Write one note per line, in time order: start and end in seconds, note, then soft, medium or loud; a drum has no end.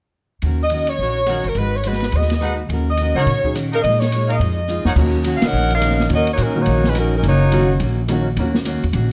0.42 0.96 D#2 medium
0.42 0.61 D#3 soft
0.42 0.62 C#4 soft
0.42 0.62 F#4 soft
0.42 ride soft
0.46 0.63 A#4 soft
0.63 0.88 D#5 medium
0.70 0.89 D#3 medium
0.70 0.89 C#4 medium
0.70 0.90 F#4 medium
0.70 0.91 A#4 medium
0.70 hi-hat pedal medium
0.70 ride medium
0.87 1.45 C#5 medium
0.87 ride medium
0.98 1.41 A#1 medium
0.98 1.18 D#3 soft
0.98 1.18 C#4 soft
0.98 1.19 F#4 soft
0.98 1.19 A#4 soft
1.26 1.46 D#3 medium
1.26 1.46 C#4 medium
1.26 1.39 D#4 medium
1.26 1.47 F#4 medium
1.26 1.39 A#4 medium
1.26 1.47 A#4 medium
1.26 1.39 C#5 medium
1.26 1.39 F#5 medium
1.26 cross-stick medium
1.26 hi-hat pedal medium
1.26 ride medium
1.44 1.54 G1 medium
1.44 ride soft
1.48 1.57 A#4 medium
1.55 2.09 G#1 medium
1.55 1.75 G#3 soft
1.55 1.75 D#4 soft
1.55 1.75 B4 medium
1.55 ride soft
1.59 1.76 F#4 soft
1.59 1.77 B4 soft
1.75 1.85 C#5 medium
1.84 2.03 G#3 soft
1.84 2.04 D#4 medium
1.84 2.04 F#4 medium
1.84 2.14 B4 medium
1.84 2.04 B4 medium
1.84 hi-hat pedal soft
1.84 ride medium
1.93 snare soft
2.00 snare soft
2.00 ride soft
2.12 2.66 D#2 medium
2.12 2.32 G#3 soft
2.12 2.32 D#4 soft
2.12 ride soft
2.16 2.33 F#4 soft
2.16 2.33 B4 soft
2.16 2.60 D#5 medium
2.21 snare soft
2.30 snare soft
2.30 ride medium
2.41 2.60 G#3 soft
2.41 2.53 D#4 medium
2.41 2.60 D#4 medium
2.41 2.61 F#4 medium
2.41 2.53 G#4 medium
2.41 2.53 B4 medium
2.41 2.61 B4 medium
2.41 2.53 F#5 medium
2.41 cross-stick medium
2.41 hi-hat pedal soft
2.69 3.12 D#2 medium
2.69 2.88 D#3 soft
2.69 2.89 C#4 soft
2.69 2.89 F#4 medium
2.69 ride soft
2.74 2.90 A#4 soft
2.89 3.15 D#5 medium
2.97 3.17 D#3 medium
2.97 3.18 C#4 medium
2.97 hi-hat pedal soft
2.97 ride medium
3.01 3.18 F#4 medium
3.01 3.18 A#4 medium
3.15 3.25 C#2 medium
3.15 3.25 F#3 medium
3.15 3.25 C#4 medium
3.15 3.23 D#4 medium
3.15 3.26 D#4 soft
3.15 3.22 A#4 medium
3.15 3.26 A#4 medium
3.15 3.23 C#5 medium
3.15 3.52 C#5 medium
3.15 3.22 F#5 medium
3.26 3.80 A#2 medium
3.26 3.45 D#3 soft
3.26 3.46 C#4 soft
3.26 3.46 F#4 soft
3.26 3.46 A#4 soft
3.26 ride soft
3.43 3.53 F#3 medium
3.43 3.53 C#4 soft
3.43 3.54 D#4 soft
3.43 3.54 G#4 medium
3.43 kick soft
3.55 3.73 D#3 medium
3.55 3.73 C#4 medium
3.55 3.74 F#4 medium
3.55 3.74 A#4 medium
3.55 cross-stick medium
3.55 hi-hat pedal medium
3.55 ride medium
3.72 3.79 D#4 medium
3.72 3.79 G#4 medium
3.72 3.79 A#4 medium
3.72 3.79 F5 medium
3.72 ride soft
3.82 4.37 A#2 medium
3.82 4.02 A#2 soft
3.82 4.03 G#3 soft
3.82 3.99 D#5 loud
3.82 ride medium
3.87 4.03 D#4 soft
3.87 4.04 F4 soft
4.00 4.29 C#5 medium
4.00 snare soft
4.00 ride soft
4.12 4.30 A#2 medium
4.12 4.31 G#3 medium
4.12 4.31 D#4 medium
4.12 4.31 F4 medium
4.12 hi-hat pedal medium
4.12 ride medium
4.27 4.35 D#4 medium
4.27 4.35 G#4 medium
4.27 4.35 A#4 medium
4.27 4.86 D#5 medium
4.27 4.35 F5 medium
4.27 ride soft
4.39 4.82 F2 medium
4.39 4.58 A#2 soft
4.39 4.58 G#3 soft
4.39 4.59 D#4 soft
4.39 4.60 F4 soft
4.39 ride soft
4.68 4.86 A#2 medium
4.68 4.87 G#3 medium
4.68 4.87 D#4 medium
4.68 4.87 F4 medium
4.68 hi-hat pedal medium
4.85 4.95 F2 medium
4.85 4.92 D#4 medium
4.85 4.92 A#4 medium
4.85 4.93 C#5 medium
4.85 4.93 F#5 medium
4.85 snare medium
4.96 5.39 D#2 medium
4.96 5.15 D#3 medium
4.96 5.75 D#3 soft
4.96 5.75 F#3 soft
4.96 5.15 A#3 soft
4.96 5.75 A#3 soft
4.96 5.15 C#4 medium
4.96 5.76 C#4 medium
4.96 5.76 F#4 medium
4.96 5.16 F#4 medium
4.96 kick medium
4.96 crash medium
5.24 5.43 D#3 medium
5.24 5.43 A#3 medium
5.24 5.44 C#4 medium
5.24 5.44 F#4 medium
5.24 hi-hat pedal medium
5.24 ride medium
5.35 5.43 F5 medium
5.42 5.72 D#4 medium
5.42 5.72 A#4 medium
5.42 5.72 C#5 medium
5.42 muted upright bass stroke soft
5.42 snare medium
5.42 ride medium
5.46 5.72 F#5 medium
5.52 6.07 A#1 medium
5.52 5.71 D#3 soft
5.52 5.72 A#3 soft
5.52 5.72 C#4 soft
5.52 5.73 F#4 soft
5.70 6.09 D#4 medium
5.70 6.09 C#5 medium
5.70 6.09 F5 loud
5.70 ride soft
5.74 6.09 A#4 medium
5.80 5.99 D#3 medium
5.80 5.99 A#3 medium
5.80 6.00 C#4 medium
5.80 6.00 F#4 medium
5.80 cross-stick medium
5.80 hi-hat pedal medium
5.80 ride medium
5.90 snare soft
6.00 snare soft
6.08 6.36 D#2 medium
6.08 6.28 D#3 soft
6.08 6.28 A#3 soft
6.08 6.28 C#4 soft
6.08 6.29 F#4 soft
6.08 ride medium
6.14 6.28 C#4 medium
6.14 6.29 F#4 medium
6.14 6.29 A#4 medium
6.14 6.28 D#5 loud
6.27 ride soft
6.32 6.41 A#3 medium
6.32 6.41 D#4 medium
6.32 6.41 F#4 medium
6.32 6.41 C#5 medium
6.37 6.64 A#2 medium
6.37 6.56 D#3 medium
6.37 6.56 A#3 medium
6.37 6.57 C#4 medium
6.37 6.57 F#4 medium
6.37 hi-hat pedal medium
6.37 ride medium
6.43 6.58 F#3 medium
6.43 6.58 C#4 medium
6.43 6.58 D#4 medium
6.43 6.58 A#4 medium
6.56 6.93 D#3 medium
6.56 6.93 F#3 soft
6.56 6.93 A#3 soft
6.56 6.93 C#4 soft
6.56 6.93 F#4 medium
6.61 6.87 A#3 medium
6.61 6.87 D#4 medium
6.61 6.87 F#4 medium
6.61 6.87 C#5 medium
6.65 7.20 A#1 medium
6.65 6.84 D#3 soft
6.65 6.85 A#3 soft
6.65 6.86 C#4 soft
6.65 6.86 F#4 soft
6.65 ride medium
6.84 6.97 G#3 medium
6.84 6.97 C#4 medium
6.84 6.97 F4 medium
6.84 6.97 B4 medium
6.84 snare soft
6.94 7.13 D#3 medium
6.94 7.13 A#3 medium
6.94 7.14 C#4 medium
6.94 7.14 F#4 medium
6.94 cross-stick medium
6.94 hi-hat pedal medium
6.94 ride medium
6.98 7.13 F#3 medium
6.98 7.13 C#4 medium
6.98 7.13 D#4 medium
6.98 7.13 A#4 medium
7.15 7.24 F#3 medium
7.15 7.24 C#4 medium
7.15 7.24 D#4 medium
7.15 7.24 A#4 medium
7.23 7.77 F#1 medium
7.23 7.42 D#3 soft
7.23 7.42 A#3 soft
7.23 7.43 C#4 soft
7.23 7.43 F#4 medium
7.23 ride medium
7.28 7.79 A#3 medium
7.28 7.78 D#4 medium
7.28 7.79 F#4 medium
7.28 7.78 C#5 medium
7.52 7.68 D#3 medium
7.52 7.70 D#3 medium
7.52 7.68 F#3 medium
7.52 7.71 A#3 medium
7.52 7.68 A#3 medium
7.52 7.71 C#4 medium
7.52 7.68 C#4 medium
7.52 7.68 F#4 medium
7.52 7.71 F#4 medium
7.52 hi-hat pedal medium
7.52 ride medium
7.80 8.34 A#1 medium
7.80 7.99 D#3 soft
7.80 7.99 A#3 medium
7.80 8.00 C#4 medium
7.80 8.00 F#4 medium
7.80 ride medium
8.08 8.27 D#3 medium
8.08 8.24 D#3 medium
8.08 8.25 F#3 soft
8.08 8.28 A#3 medium
8.08 8.25 A#3 soft
8.08 8.25 C#4 soft
8.08 8.28 C#4 medium
8.08 8.25 F#4 medium
8.08 8.28 F#4 medium
8.08 cross-stick medium
8.08 hi-hat pedal medium
8.08 ride medium
8.37 8.79 D#2 medium
8.37 8.56 D#3 medium
8.37 8.53 D#3 medium
8.37 8.53 F#3 soft
8.37 8.56 A#3 medium
8.37 8.54 A#3 soft
8.37 8.57 C#4 soft
8.37 8.54 C#4 medium
8.37 8.57 F#4 medium
8.37 8.54 F#4 medium
8.37 ride medium
8.55 snare medium
8.65 8.84 D#3 medium
8.65 8.84 A#3 medium
8.65 8.84 C#4 medium
8.65 8.85 F#4 medium
8.65 hi-hat pedal medium
8.65 ride medium
8.83 8.92 E2 medium
8.83 ride soft
8.92 9.12 A#1 medium
8.92 9.11 D#3 medium
8.92 9.12 A#3 soft
8.92 9.12 C#4 medium
8.92 9.12 F#4 medium
8.92 ride medium